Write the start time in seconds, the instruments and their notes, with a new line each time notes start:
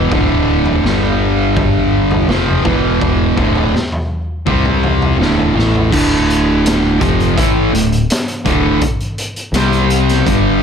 Already playing: distorted electric guitar E2 B2 E3
0.11 fingered electric bass D1, distorted electric guitar D2 A2 D3, kick, floor tom
0.65 floor tom
0.84 fingered electric bass G1, distorted electric guitar G2 D3 G3, snare
1.56 kick, floor tom
2.11 floor tom
2.28 fingered electric bass F1, distorted electric guitar F2 C3 F3, snare, mid tom
2.47 floor tom
2.64 fingered electric bass E1, distorted electric guitar E2 B2 E3, kick, floor tom, mid tom
3.01 kick, floor tom
3.37 fingered electric bass D1, distorted electric guitar D2 A2 D3, kick, floor tom
3.55 floor tom
3.76 snare
3.92 floor tom
4.46 fingered electric bass C2, distorted electric guitar C3 G3 C4, kick, floor tom
4.65 mid tom
4.83 floor tom
5.02 floor tom
5.18 fingered electric bass D1, distorted electric guitar D2 A2 D3
5.22 snare
5.39 floor tom
5.55 fingered electric bass A1, distorted electric guitar A2 E3 A3, snare
5.75 floor tom
5.91 fingered electric bass D1, distorted electric guitar D2 A2 D3, kick, crash
6.30 closed hi-hat
6.66 snare, closed hi-hat
7.00 fingered electric bass F1, distorted electric guitar F2 C3 F3, kick, closed hi-hat
7.20 closed hi-hat
7.36 fingered electric bass A1, distorted electric guitar A2 E3 A3, kick, closed hi-hat
7.72 fingered electric bass D1, distorted electric guitar D2 A2, closed hi-hat
7.92 closed hi-hat
8.10 snare, closed hi-hat
8.28 closed hi-hat
8.45 fingered electric bass D1, distorted electric guitar D2 A2 D3, kick, closed hi-hat
8.81 kick, closed hi-hat
9.00 closed hi-hat
9.18 closed hi-hat
9.36 closed hi-hat
9.52 fingered electric bass C2, distorted electric guitar C3 G3 C4, snare, closed hi-hat
9.73 closed hi-hat
9.90 closed hi-hat
10.09 snare, closed hi-hat
10.26 fingered electric bass G1, distorted electric guitar G2 D3 G3, kick, closed hi-hat